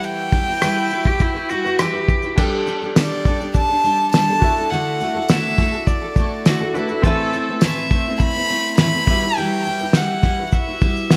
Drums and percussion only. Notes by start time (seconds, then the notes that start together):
0.03 shaker
0.32 kick, shaker
0.62 cross-stick, tambourine, shaker
0.90 shaker
1.05 kick
1.19 kick, shaker
1.49 shaker
1.66 shaker
1.79 cross-stick, tambourine, shaker
2.08 kick, shaker
2.22 shaker
2.38 kick, crash
2.67 shaker
2.96 snare, tambourine, shaker
3.25 kick, shaker
3.41 shaker
3.54 kick, shaker
3.84 shaker
4.13 snare, tambourine, shaker
4.42 kick, shaker
4.57 shaker
4.72 shaker
5.00 shaker
5.28 snare, tambourine, shaker
5.58 kick, snare, shaker
5.87 kick, shaker
6.16 kick, shaker
6.45 snare, tambourine, shaker
6.75 shaker
6.88 shaker
7.03 kick, shaker
7.33 shaker
7.61 snare, tambourine, shaker
7.90 kick, shaker
8.19 kick, shaker
8.49 shaker
8.65 shaker
8.77 snare, tambourine, shaker
9.07 kick, shaker
9.37 shaker
9.65 shaker
9.79 shaker
9.93 snare, tambourine, shaker
10.22 kick, snare, shaker
10.52 kick, shaker
10.81 kick, shaker
10.96 shaker
11.10 snare, tambourine, shaker